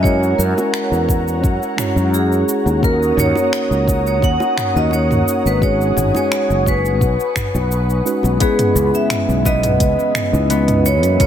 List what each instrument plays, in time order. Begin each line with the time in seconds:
Already playing: fretless electric bass F#2, analog synth pad C#5 F#5 A#5
0.02 tine electric piano G#3 C#4 E4 F#4 A#4, vibraphone C#5, kick, shaker
0.23 shaker
0.38 fretless electric bass F#2, vibraphone A#4, shaker
0.58 high bongo, shaker
0.74 finger snap, shaker
0.91 fretless electric bass E2, shaker
1.09 kick, shaker
1.28 shaker
1.44 fretless electric bass F#2, kick, shaker
1.63 shaker
1.76 tine electric piano G#3 C#4 E4 F#4 C#5, finger snap, mid tom, shaker
1.96 fretless electric bass F#2, high bongo, shaker
2.14 vibraphone G#4, shaker
2.32 shaker
2.49 shaker
2.66 fretless electric bass D#2, high bongo, shaker
2.81 tine electric piano A#3 C#4 D#4 F#4 A#4, vibraphone A#4, analog synth pad C#5 F#5 A#5 D#6, kick, shaker
3.03 shaker
3.17 fretless electric bass D#2, vibraphone C#5, mid tom, shaker
3.36 high bongo, shaker
3.53 finger snap, shaker
3.71 fretless electric bass C#2, shaker
3.87 kick, high bongo, shaker
4.07 vibraphone C#5, shaker
4.22 fretless electric bass D#2, vibraphone F#5, kick, shaker
4.40 high bongo, shaker
4.58 finger snap, mid tom, shaker
4.74 fretless electric bass D#2, tine electric piano A#3 C#4 D#4 F#4 A#4, vibraphone D#5, shaker
4.91 vibraphone C#5, high bongo, shaker
5.11 mid tom, shaker
5.28 shaker
5.45 fretless electric bass G#1, vibraphone B4, shaker
5.60 tine electric piano G#3 C#4 D#4 F#4 G#4, vibraphone C#5, analog synth pad G#5, kick, shaker
5.81 shaker
5.97 fretless electric bass G#1, mid tom, shaker
6.15 vibraphone C#5, high bongo, shaker
6.32 finger snap, shaker
6.50 fretless electric bass F#1, shaker
6.66 vibraphone B4, kick, high bongo, shaker
6.85 shaker
7.00 fretless electric bass B1, analog synth pad B4, kick, shaker
7.20 shaker
7.36 finger snap, kick, mid tom, shaker
7.54 fretless electric bass B1, high bongo, shaker
7.72 shaker
7.90 shaker
8.05 tine electric piano G#3 C#4 D#4 F#4 B4, shaker
8.23 fretless electric bass B1, high bongo, shaker
8.39 analog synth pad C#3 E3 G#3 B3, tine electric piano G#3 B3 C#4 E4 B4, harp B3, vibraphone G#4, kick, closed hi-hat, shaker
8.59 closed hi-hat, mid tom, shaker
8.75 fretless electric bass C#2, shaker
8.95 vibraphone E5, shaker
9.10 finger snap, closed hi-hat, mid tom, shaker
9.29 fretless electric bass B1, shaker
9.45 harp B3, vibraphone D#5, kick, shaker
9.63 closed hi-hat, mid tom, shaker
9.80 fretless electric bass C#2, kick, closed hi-hat, shaker
9.99 shaker
10.15 finger snap, mid tom, shaker
10.32 fretless electric bass C#2, tine electric piano G#3 C#4 D#4 E4 B4, shaker
10.50 harp B3, closed hi-hat, shaker
10.68 closed hi-hat, mid tom, shaker
10.85 analog synth pad F#3 A#3, vibraphone C#5, shaker
11.03 fretless electric bass F#2, closed hi-hat, shaker
11.18 tine electric piano G#3 C#4 E4 F#4 A#4, vibraphone C#5, kick, closed hi-hat, mid tom, shaker